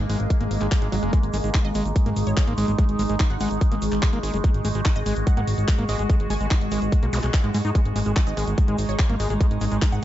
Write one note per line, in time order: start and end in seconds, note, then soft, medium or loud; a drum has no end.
0.00 1.12 G#3 medium
0.00 10.04 G#3 medium
0.00 1.15 A#3 medium
0.00 10.04 G#4 medium
0.00 10.04 D#5 medium
0.00 0.89 F#6 medium
0.10 0.17 G#1 loud
0.10 0.18 G#3 medium
0.10 open hi-hat loud
0.20 0.27 G#1 medium
0.20 closed hi-hat soft
0.30 kick loud
0.30 closed hi-hat loud
0.30 swell medium
0.41 0.48 G#1 medium
0.41 0.44 A#3 medium
0.41 closed hi-hat soft
0.51 0.58 G#1 medium
0.51 open hi-hat medium
0.61 0.68 G#1 medium
0.61 0.67 G#3 medium
0.61 clap soft
0.61 closed hi-hat soft
0.72 10.04 C#6 medium
0.72 kick loud
0.72 clap loud
0.72 closed hi-hat loud
0.82 0.89 G#1 medium
0.82 0.88 G#3 medium
0.82 closed hi-hat soft
0.92 0.99 G#1 loud
0.92 0.96 F#3 loud
0.92 open hi-hat loud
1.03 1.10 F#1 medium
1.03 1.11 G#3 medium
1.03 closed hi-hat soft
1.13 1.19 G#3 medium
1.13 10.04 G#3 medium
1.13 4.46 D#4 medium
1.13 kick loud
1.13 closed hi-hat loud
1.13 shaker soft
1.23 1.30 G#1 medium
1.23 closed hi-hat soft
1.33 1.41 G#1 loud
1.33 1.37 G#3 loud
1.33 open hi-hat loud
1.33 shaker medium
1.44 1.51 G#1 loud
1.44 1.50 G#3 medium
1.44 closed hi-hat soft
1.44 shaker medium
1.54 1.58 D#4 loud
1.54 kick loud
1.54 clap loud
1.54 closed hi-hat loud
1.54 shaker soft
1.65 1.72 G#1 medium
1.65 1.76 D#5 medium
1.65 closed hi-hat soft
1.75 1.82 G#1 loud
1.75 1.84 G#3 medium
1.75 open hi-hat loud
1.75 shaker loud
1.85 1.92 G#1 medium
1.85 closed hi-hat soft
1.85 shaker medium
1.96 kick loud
1.96 closed hi-hat loud
1.96 shaker soft
2.06 2.13 G#1 medium
2.06 2.10 A#3 medium
2.06 closed hi-hat soft
2.16 2.23 G#1 medium
2.16 open hi-hat loud
2.16 shaker loud
2.27 2.34 G#1 medium
2.27 2.33 C#5 medium
2.27 closed hi-hat soft
2.27 shaker medium
2.37 2.44 C#5 medium
2.37 kick loud
2.37 clap loud
2.37 closed hi-hat loud
2.37 shaker soft
2.47 2.55 G#1 medium
2.47 2.53 A#3 loud
2.47 closed hi-hat soft
2.58 2.65 G#1 loud
2.58 2.66 G#3 medium
2.58 open hi-hat loud
2.58 shaker loud
2.68 2.75 G#1 medium
2.68 2.72 G#3 loud
2.68 closed hi-hat soft
2.68 shaker soft
2.78 2.84 G#3 medium
2.78 kick loud
2.78 closed hi-hat medium
2.78 shaker soft
2.89 2.96 G#1 medium
2.89 closed hi-hat soft
2.99 3.06 G#1 loud
2.99 3.03 G#3 loud
2.99 open hi-hat loud
2.99 shaker medium
3.10 3.17 G#1 loud
3.10 3.15 G#3 medium
3.10 closed hi-hat soft
3.10 shaker medium
3.20 3.23 D#4 loud
3.20 kick loud
3.20 clap loud
3.20 closed hi-hat loud
3.20 shaker soft
3.30 3.37 G#1 medium
3.30 3.37 F#5 medium
3.30 closed hi-hat soft
3.40 3.48 G#1 loud
3.40 3.49 G#3 medium
3.40 3.47 F#5 medium
3.40 open hi-hat loud
3.40 shaker medium
3.51 3.58 G#1 medium
3.51 closed hi-hat soft
3.51 shaker medium
3.61 kick loud
3.61 closed hi-hat loud
3.61 shaker soft
3.72 3.79 G#1 medium
3.72 3.75 A#3 medium
3.72 closed hi-hat soft
3.82 3.89 G#1 loud
3.82 open hi-hat loud
3.82 shaker medium
3.92 3.99 G#1 medium
3.92 clap soft
3.92 closed hi-hat soft
3.92 shaker medium
4.03 kick loud
4.03 clap loud
4.03 closed hi-hat medium
4.03 shaker soft
4.13 4.20 G#1 medium
4.13 4.19 A#3 loud
4.13 closed hi-hat soft
4.23 4.30 G#1 loud
4.23 4.32 G#3 medium
4.23 open hi-hat loud
4.23 shaker medium
4.34 4.41 F#1 loud
4.34 4.37 G#3 loud
4.34 closed hi-hat soft
4.34 shaker medium
4.44 4.50 G#3 medium
4.44 7.77 F#4 medium
4.44 kick loud
4.44 closed hi-hat medium
4.44 shaker soft
4.54 4.61 G#1 medium
4.54 closed hi-hat soft
4.65 4.72 G#1 loud
4.65 4.68 G#3 loud
4.65 open hi-hat loud
4.65 shaker loud
4.75 4.82 G#1 loud
4.75 4.81 G#3 medium
4.75 closed hi-hat soft
4.75 shaker medium
4.85 4.89 D#4 loud
4.85 kick loud
4.85 clap loud
4.85 closed hi-hat medium
4.85 shaker soft
4.96 5.03 G#1 medium
4.96 5.07 D#5 loud
4.96 closed hi-hat soft
5.06 5.13 G#1 loud
5.06 5.15 G#3 medium
5.06 open hi-hat loud
5.06 shaker medium
5.15 5.23 G#1 medium
5.15 closed hi-hat soft
5.15 shaker medium
5.27 5.33 F#5 medium
5.27 kick loud
5.27 closed hi-hat medium
5.27 shaker soft
5.37 5.44 G#1 medium
5.37 5.41 A#3 medium
5.37 5.44 F#5 medium
5.37 closed hi-hat soft
5.47 5.55 G#1 loud
5.47 open hi-hat loud
5.47 shaker loud
5.58 5.65 G#1 medium
5.58 closed hi-hat soft
5.58 shaker medium
5.68 kick loud
5.68 clap loud
5.68 closed hi-hat medium
5.68 shaker soft
5.79 5.86 G#1 medium
5.79 5.84 A#3 loud
5.79 closed hi-hat soft
5.88 5.96 G#1 loud
5.88 5.97 G#3 medium
5.88 6.28 D#5 medium
5.88 open hi-hat loud
5.88 shaker loud
5.99 6.06 G#1 medium
5.99 6.03 G#3 loud
5.99 closed hi-hat soft
5.99 shaker medium
6.09 6.15 G#3 medium
6.09 kick loud
6.09 closed hi-hat medium
6.09 shaker soft
6.20 6.27 G#1 medium
6.20 closed hi-hat soft
6.30 6.37 G#1 loud
6.30 6.34 G#3 medium
6.30 6.61 G#5 loud
6.30 open hi-hat loud
6.30 shaker loud
6.40 6.48 G#1 medium
6.40 6.46 G#3 medium
6.40 closed hi-hat soft
6.40 shaker medium
6.51 6.54 D#4 loud
6.51 kick loud
6.51 clap loud
6.51 closed hi-hat medium
6.51 shaker soft
6.61 6.68 G#1 medium
6.61 closed hi-hat soft
6.71 6.79 G#1 loud
6.71 6.80 G#3 medium
6.71 open hi-hat loud
6.71 shaker medium
6.82 6.89 G#1 medium
6.82 closed hi-hat soft
6.82 shaker medium
6.92 kick loud
6.92 closed hi-hat medium
6.92 shaker soft
7.03 7.10 B1 medium
7.03 7.06 A#3 medium
7.03 closed hi-hat soft
7.13 7.20 B1 medium
7.13 7.19 G#3 medium
7.13 open hi-hat loud
7.13 zap medium
7.13 shaker loud
7.23 7.30 B1 medium
7.23 7.27 G#3 medium
7.23 clap soft
7.23 closed hi-hat soft
7.23 shaker medium
7.34 kick loud
7.34 clap loud
7.34 closed hi-hat medium
7.34 shaker soft
7.44 7.51 G#2 medium
7.44 7.50 G#3 medium
7.44 closed hi-hat soft
7.54 7.61 G#2 loud
7.54 7.58 G#3 loud
7.54 open hi-hat loud
7.54 shaker medium
7.65 7.72 G#2 medium
7.65 7.70 D#4 loud
7.65 closed hi-hat soft
7.65 shaker medium
7.75 7.81 G#3 medium
7.75 10.04 D#4 medium
7.75 kick loud
7.75 closed hi-hat medium
7.75 shaker soft
7.85 7.92 G#1 medium
7.85 closed hi-hat soft
7.96 8.03 G#1 loud
7.96 7.99 G#3 loud
7.96 open hi-hat loud
7.96 shaker medium
8.06 8.13 G#1 medium
8.06 8.12 G#3 medium
8.06 closed hi-hat soft
8.06 shaker medium
8.16 8.20 D#4 loud
8.16 kick loud
8.16 clap loud
8.16 closed hi-hat medium
8.16 shaker soft
8.27 8.34 G#1 medium
8.27 8.38 D#5 medium
8.27 closed hi-hat soft
8.37 8.44 G#1 loud
8.37 8.46 G#3 medium
8.37 open hi-hat loud
8.37 shaker loud
8.47 8.55 G#1 medium
8.47 closed hi-hat soft
8.47 shaker soft
8.58 kick loud
8.58 closed hi-hat loud
8.58 shaker soft
8.68 8.75 G#1 medium
8.68 8.77 G#3 medium
8.68 closed hi-hat soft
8.78 8.86 G#1 medium
8.78 open hi-hat loud
8.78 shaker medium
8.89 8.96 G#1 medium
8.89 8.95 C#5 medium
8.89 closed hi-hat soft
8.89 shaker medium
8.99 9.06 C#5 medium
8.99 kick loud
8.99 clap loud
8.99 closed hi-hat medium
8.99 shaker soft
9.10 9.17 G#1 medium
9.10 9.15 A#3 loud
9.10 closed hi-hat soft
9.20 9.27 G#1 loud
9.20 9.29 G#3 medium
9.20 open hi-hat loud
9.20 shaker loud
9.30 9.37 G#1 medium
9.30 9.34 G#3 loud
9.30 closed hi-hat soft
9.30 shaker soft
9.40 9.46 G#3 medium
9.40 kick loud
9.40 closed hi-hat medium
9.40 shaker soft
9.51 9.58 G#1 medium
9.51 closed hi-hat soft
9.61 9.68 G#1 loud
9.61 9.65 G#3 loud
9.61 open hi-hat loud
9.61 shaker medium
9.72 9.79 G#1 medium
9.72 9.77 G#3 medium
9.72 closed hi-hat soft
9.72 shaker soft
9.82 9.85 D#4 loud
9.82 kick loud
9.82 clap loud
9.82 closed hi-hat medium
9.82 shaker soft
9.92 9.99 G#1 medium
9.92 9.99 F#5 medium
9.92 closed hi-hat soft